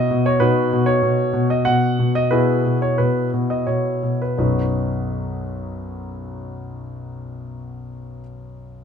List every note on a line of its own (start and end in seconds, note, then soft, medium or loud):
0.00 0.38 E4 soft
0.00 0.37 F#4 soft
0.00 0.25 D#5 medium
0.11 0.39 B2 soft
0.26 0.41 C#5 medium
0.40 0.71 B2 medium
0.40 2.29 D#4 soft
0.40 2.28 F#4 soft
0.40 0.87 B4 medium
0.73 1.01 B2 medium
0.86 1.46 C#5 medium
1.03 1.32 B2 soft
1.33 1.65 B2 medium
1.50 1.67 D#5 medium
1.65 1.98 B2 soft
1.65 2.11 F#5 medium
1.99 2.30 B2 soft
2.15 2.32 D#5 medium
2.31 2.64 B2 soft
2.31 4.35 E4 soft
2.31 4.35 G#4 soft
2.31 2.77 B4 medium
2.66 2.98 B2 soft
2.82 2.99 C#5 medium
2.98 3.32 B2 soft
2.98 3.29 B4 medium
3.34 3.66 B2 soft
3.50 3.68 D#5 soft
3.67 4.02 B2 soft
3.67 4.21 C#5 soft
4.03 4.38 B2 soft
4.22 4.37 B4 soft
4.38 8.20 B1 soft
4.38 8.21 F#2 soft
4.38 8.21 F#3 soft
4.38 8.21 B3 soft
4.38 8.21 D#4 soft
4.38 8.22 F#4 soft
4.38 8.21 B4 soft